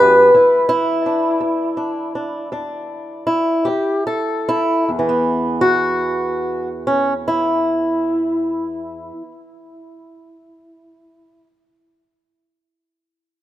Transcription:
0.00 0.34 F#2 medium
0.00 4.89 E3 soft
0.00 0.34 G4 medium
0.00 1.40 B4 loud
0.34 0.98 E2 medium
0.34 0.68 E4 soft
0.69 3.25 E4 loud
1.06 1.76 D4 soft
1.41 2.06 E2 medium
1.77 2.14 D4 soft
2.15 2.51 D4 soft
2.52 3.20 E2 medium
2.52 3.62 D4 soft
3.27 3.66 E4 medium
3.65 4.39 F2 medium
3.65 4.06 G4 medium
4.07 4.89 A4 medium
4.49 4.89 E4 loud
4.89 9.11 E2 medium
4.99 9.22 E3 medium
5.09 9.32 B3 medium
5.61 6.68 F#4 loud
6.87 7.13 C#4 medium
7.28 11.46 E4 medium

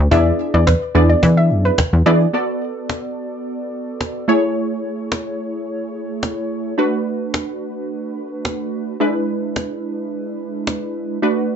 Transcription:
0.11 0.32 E2 loud
0.11 0.71 B3 medium
0.11 0.71 D4 medium
0.11 0.71 E4 medium
0.11 0.71 G#4 medium
0.11 0.72 D5 medium
0.11 0.35 E5 loud
0.11 cajon bass loud
0.26 cajon slap soft
0.39 cajon slap soft
0.54 0.74 E2 loud
0.54 0.65 D5 medium
0.54 cajon slap soft
0.67 0.79 B4 medium
0.67 cajon bass loud
0.67 cajon slap loud
0.67 cajon slap medium
0.82 cajon slap soft
0.95 1.15 E2 loud
0.95 1.75 B3 medium
0.95 1.75 D4 medium
0.95 1.75 E4 medium
0.95 1.75 G#4 medium
0.95 1.75 D5 medium
0.95 cajon slap soft
1.09 1.20 D5 medium
1.09 cajon slap soft
1.23 1.52 E3 loud
1.23 cajon bass loud
1.37 1.48 E5 medium
1.37 cajon slap soft
1.50 1.71 F#2 medium
1.50 cajon slap soft
1.65 1.76 B4 medium
1.65 cajon slap soft
1.78 1.84 E2 medium
1.78 cajon bass loud
1.78 cajon slap loud
1.78 cajon slap medium
1.93 2.03 E2 medium
2.06 2.26 E3 loud
2.06 2.26 B3 medium
2.06 2.26 D4 medium
2.06 2.26 E4 medium
2.06 2.26 G#4 medium
2.06 2.18 D5 medium
2.06 2.27 D5 medium
2.21 cajon slap soft
2.33 4.24 B3 medium
2.33 4.24 F#4 medium
2.33 4.24 A4 medium
2.33 4.25 D5 medium
2.90 cajon slap medium
4.01 cajon slap loud
4.28 6.74 A3 medium
4.28 6.74 E4 medium
4.28 6.74 G#4 medium
4.28 6.75 C#5 medium
5.12 cajon slap loud
6.23 cajon slap loud
6.78 8.96 A3 medium
6.78 8.96 D4 medium
6.78 8.97 F#4 medium
6.78 8.97 B4 medium
7.34 cajon slap loud
8.45 cajon slap medium
9.00 11.18 G#3 medium
9.00 11.19 D4 medium
9.00 11.19 E4 medium
9.00 11.19 B4 medium
9.56 cajon slap medium
10.67 cajon slap medium
11.22 11.56 A3 medium
11.22 11.56 D4 medium
11.22 11.56 F#4 medium
11.22 11.56 B4 medium

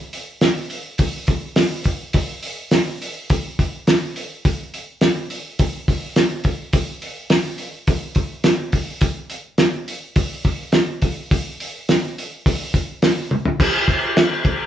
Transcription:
0.13 open hi-hat soft
0.41 snare loud
0.41 open hi-hat medium
0.70 open hi-hat soft
0.98 kick loud
0.98 open hi-hat medium
1.27 kick medium
1.27 open hi-hat soft
1.56 snare loud
1.56 open hi-hat medium
1.84 kick medium
1.84 open hi-hat medium
2.13 kick loud
2.13 open hi-hat medium
2.43 open hi-hat medium
2.71 snare medium
2.71 open hi-hat medium
3.02 open hi-hat soft
3.30 kick loud
3.30 open hi-hat medium
3.59 kick medium
3.59 open hi-hat soft
3.87 snare loud
3.87 open hi-hat medium
4.16 open hi-hat soft
4.45 kick loud
4.45 open hi-hat medium
4.74 open hi-hat soft
5.01 snare loud
5.01 open hi-hat medium
5.30 open hi-hat soft
5.59 kick loud
5.59 open hi-hat medium
5.88 kick medium
5.88 open hi-hat soft
6.16 snare loud
6.16 open hi-hat medium
6.44 kick medium
6.44 open hi-hat medium
6.73 kick loud
6.73 open hi-hat medium
7.02 open hi-hat soft
7.30 snare loud
7.30 open hi-hat medium
7.58 open hi-hat soft
7.87 kick loud
7.87 open hi-hat medium
8.15 kick medium
8.15 open hi-hat soft
8.44 snare loud
8.44 open hi-hat medium
8.72 kick medium
8.72 open hi-hat soft
9.01 kick loud
9.01 open hi-hat medium
9.30 open hi-hat soft
9.58 snare loud
9.58 open hi-hat medium
9.88 open hi-hat soft
10.16 kick loud
10.16 open hi-hat medium
10.45 kick medium
10.45 open hi-hat soft
10.72 snare loud
10.72 open hi-hat medium
11.02 kick medium
11.02 open hi-hat medium
11.31 kick loud
11.31 open hi-hat medium
11.60 open hi-hat medium
11.89 snare loud
11.89 open hi-hat medium
12.18 open hi-hat soft
12.46 kick loud
12.46 open hi-hat medium
12.74 kick medium
12.74 open hi-hat medium
13.02 snare loud
13.02 open hi-hat medium
13.31 high tom medium
13.45 floor tom medium
13.60 kick loud
13.60 crash loud
13.60 crash medium
13.88 kick medium
13.88 crash medium
14.17 snare loud
14.17 crash medium
14.45 kick medium
14.45 crash medium

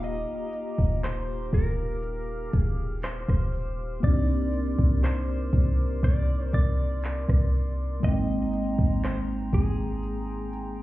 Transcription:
0.00 0.25 D#1 loud
0.00 3.48 A#3 medium
0.00 3.50 D#4 medium
0.00 3.51 F4 medium
0.00 3.52 G4 medium
0.00 3.99 G4 medium
0.00 1.00 D#5 loud
0.00 3.99 F5 medium
0.00 1.51 A#5 medium
0.00 7.99 D6 medium
0.00 closed hi-hat medium
0.53 closed hi-hat medium
0.78 1.50 D#1 loud
0.78 kick medium
1.03 1.50 C5 medium
1.03 clap loud
1.03 closed hi-hat medium
1.53 2.49 D#1 loud
1.53 2.57 A#4 loud
1.53 4.01 F6 medium
1.53 kick medium
1.53 open hi-hat medium
2.03 closed hi-hat medium
2.53 3.25 D#1 loud
2.53 kick medium
2.53 closed hi-hat medium
2.57 3.08 G#4 loud
3.02 4.00 C5 loud
3.02 clap loud
3.02 closed hi-hat medium
3.28 4.00 D#1 loud
3.28 kick medium
3.28 cross-stick medium
3.54 open hi-hat medium
4.00 4.75 C2 loud
4.00 7.98 A#3 medium
4.00 7.99 C4 medium
4.00 7.99 A#4 medium
4.00 7.99 D5 medium
4.00 5.04 D5 loud
4.00 10.83 C6 medium
4.00 kick loud
4.00 closed hi-hat medium
4.04 8.00 D4 medium
4.04 8.01 D#4 medium
4.08 8.02 G4 medium
4.53 closed hi-hat medium
4.79 5.50 C2 loud
4.79 kick loud
5.04 6.04 C5 medium
5.04 clap loud
5.04 closed hi-hat medium
5.53 6.01 C2 loud
5.53 kick loud
5.53 closed hi-hat medium
6.03 6.51 C2 loud
6.03 6.53 D5 loud
6.03 kick medium
6.03 closed hi-hat medium
6.53 7.25 C2 loud
6.53 8.04 D5 loud
6.53 kick medium
6.53 closed hi-hat medium
7.02 clap loud
7.02 closed hi-hat medium
7.29 8.00 C2 loud
7.29 kick loud
7.29 cross-stick medium
7.54 open hi-hat medium
8.00 8.75 G#1 loud
8.00 10.83 G#3 medium
8.00 10.83 A#3 medium
8.00 10.83 G5 medium
8.00 10.83 A#5 medium
8.00 kick loud
8.00 closed hi-hat medium
8.04 10.83 C4 medium
8.04 10.83 D#4 medium
8.04 9.04 D#5 loud
8.08 10.83 G5 medium
8.53 closed hi-hat medium
8.79 9.50 G#1 loud
8.79 kick medium
9.04 9.18 C5 medium
9.04 clap loud
9.04 closed hi-hat medium
9.53 10.83 G#1 loud
9.53 10.83 G#4 medium
9.53 kick medium
9.53 closed hi-hat medium
10.03 closed hi-hat medium
10.53 closed hi-hat medium

